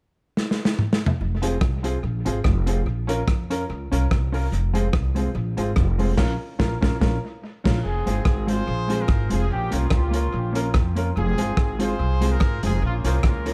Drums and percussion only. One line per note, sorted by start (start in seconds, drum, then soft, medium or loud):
0.37 snare medium
0.51 snare medium
0.65 snare medium
0.79 mid tom medium
0.93 snare medium
1.06 floor tom medium
1.43 closed hi-hat medium
1.61 kick loud
1.61 cross-stick loud
1.84 closed hi-hat medium
2.26 closed hi-hat medium
2.44 kick medium
2.44 cross-stick medium
2.67 closed hi-hat medium
3.09 closed hi-hat medium
3.28 kick loud
3.28 cross-stick loud
3.51 closed hi-hat medium
3.92 closed hi-hat medium
4.11 kick loud
4.11 cross-stick loud
4.34 open hi-hat medium
4.53 hi-hat pedal medium
4.75 closed hi-hat medium
4.93 kick loud
4.93 cross-stick loud
5.16 closed hi-hat medium
5.58 closed hi-hat medium
5.76 kick loud
5.76 cross-stick medium
5.99 open hi-hat medium
6.18 kick loud
6.18 snare loud
6.18 crash medium
6.60 kick loud
6.60 snare loud
6.83 kick loud
6.83 snare medium
7.01 kick loud
7.01 snare loud
7.65 kick loud
7.65 snare loud
7.65 crash medium
8.07 closed hi-hat medium
8.25 kick loud
8.25 cross-stick loud
8.48 closed hi-hat medium
8.90 closed hi-hat medium
9.08 kick loud
9.08 cross-stick loud
9.30 closed hi-hat medium
9.72 closed hi-hat medium
9.90 kick loud
9.90 cross-stick loud
10.14 closed hi-hat medium
10.55 closed hi-hat medium
10.74 kick loud
10.74 cross-stick loud
10.96 closed hi-hat medium
11.38 closed hi-hat medium
11.57 kick loud
11.57 cross-stick loud
11.80 closed hi-hat medium
12.22 closed hi-hat medium
12.40 kick loud
12.40 cross-stick medium
12.63 closed hi-hat medium
13.05 closed hi-hat medium
13.23 kick loud
13.23 cross-stick loud
13.46 closed hi-hat medium